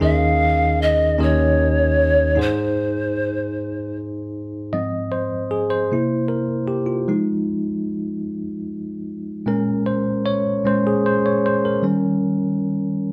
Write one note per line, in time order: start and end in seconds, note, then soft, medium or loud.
0.00 1.15 D#2 medium
0.00 1.15 D#3 medium
0.00 1.17 C#4 medium
0.00 1.18 D#4 medium
0.00 1.19 G#4 medium
0.00 1.19 A#4 medium
0.00 1.19 D#5 medium
0.00 0.83 F5 loud
0.82 1.20 D#5 medium
1.19 2.34 D#2 medium
1.19 2.34 D#3 medium
1.19 2.37 C#4 medium
1.19 2.34 D#4 medium
1.19 2.38 G4 medium
1.19 2.38 A#4 medium
1.19 2.42 C#5 loud
1.19 2.38 D#5 medium
2.35 4.70 G#2 medium
2.35 4.69 D#4 medium
2.35 4.70 G#4 medium
2.35 4.71 C5 medium
2.41 3.97 C5 medium
4.73 5.88 G#2 soft
4.73 5.88 F3 soft
4.73 5.88 C4 medium
4.73 5.10 D#5 medium
5.12 5.53 C5 medium
5.51 5.72 G#4 medium
5.70 6.32 C5 medium
5.91 6.44 C3 soft
5.91 6.45 A#3 soft
5.91 6.45 E4 medium
6.28 6.71 A#4 medium
6.68 6.90 G4 medium
6.86 8.03 F4 medium
7.08 8.24 F3 medium
7.08 8.24 G#3 soft
7.08 8.24 D#4 medium
9.46 10.61 A#2 medium
9.46 10.61 G#3 soft
9.46 10.62 C#4 medium
9.46 9.84 A#4 medium
9.86 10.27 C5 medium
10.26 10.67 C#5 loud
10.65 11.01 A#2 soft
10.65 11.01 G#3 soft
10.65 11.01 C#4 medium
10.65 10.87 C5 loud
10.87 11.06 G#4 medium
11.06 11.26 C5 medium
11.26 11.46 C#5 medium
11.46 11.66 C5 medium
11.65 12.40 A#4 medium
11.82 12.97 D#3 medium
11.82 12.98 G3 medium
11.82 12.98 C#4 medium